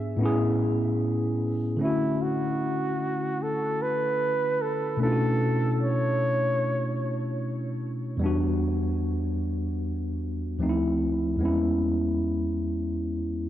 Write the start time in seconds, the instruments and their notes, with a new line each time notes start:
Already playing: tine electric piano G#2 B3 D4 F#4 G#4
0.17 tine electric piano A2 B3
0.21 tine electric piano C#4 E4
0.25 tine electric piano G#4
1.77 tine electric piano D3 A3
1.81 tine electric piano C#4 E4, flugelhorn E4
1.85 tine electric piano F#4
2.22 flugelhorn F#4
3.42 flugelhorn A4
3.82 flugelhorn B4
4.61 flugelhorn A4
4.97 tine electric piano B2 A3 C#4
5.02 tine electric piano D4 E4 F4, flugelhorn A4
5.12 tine electric piano F#4
5.82 flugelhorn C#5
8.17 tine electric piano E2 G3
8.21 tine electric piano B3 D4
8.26 tine electric piano F#4
10.59 tine electric piano D2 F3 A3 C4
10.63 tine electric piano D#4
10.69 tine electric piano E4
11.36 tine electric piano E2 G#3
11.41 tine electric piano B3 C#4
11.45 tine electric piano E4